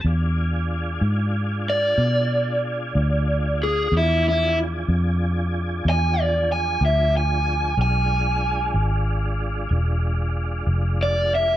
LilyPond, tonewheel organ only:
\new Staff \with { instrumentName = "Tonewheel organ" } { \time 12/8 \key e \phrygian \tempo 4. = 62 <d' f' gis'>1. | <f d' gis'>1. | <gis d' f'>1. | }